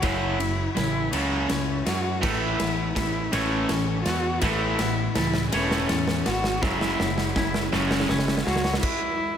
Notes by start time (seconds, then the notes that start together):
Already playing: E4 A4 C#5
0.02 F#1 F#2 C#3 F#3 E4, kick, snare, ride
0.39 F#2 C#3 F#3, ride
0.75 A1 F#2 C#3 E4, snare, ride
1.11 C#2 F#2 C#3 F#3 C#4 A4, ride
1.49 C#2 F#2 C#3 E4, snare, ride
1.85 F#2 F#3 F#4, snare, ride
2.22 A1 A2 E3 A3 E4, kick, snare, crash
2.58 A1 A2 E3 B3, snare, ride
2.95 A1 A2 E3 E4 A4, kick, snare, ride
3.31 A1 A2 E3 A3 C#4 C#5, snare, ride
3.69 A1 A2 E3 A4, snare, ride
4.03 E2 B3 F#4, snare, ride
4.40 A1 A2 E3 A3 E4, kick, snare, ride
4.79 A2 E3 B3, snare, ride
5.13 C#2 A2 E3 E4, snare, ride
5.18 A4
5.34 snare
5.51 E1 A2 E3 A3 C#4 C#5, snare, ride
5.71 snare
5.89 E2 A2 E3 A4, snare, ride
6.08 snare
6.26 G#1 B3 F#4, snare, ride
6.44 snare
6.61 F#1 F#2 C#3 F#3 E4, kick, snare
6.81 snare
6.99 F#1 F#2 C#3 F#3, snare
7.18 snare
7.34 F#1 F#2 C#3 E4, kick, snare
7.54 snare
7.72 F#1 F#2 C#3 F#3 C#4 A4, snare
7.91 snare
8.00 snare
8.08 F#1 F#2 C#3 E4, snare
8.19 snare
8.28 snare
8.37 snare
8.46 C#2 F#3 F#4, snare
8.56 snare
8.64 snare
8.74 snare
8.82 E4, kick, crash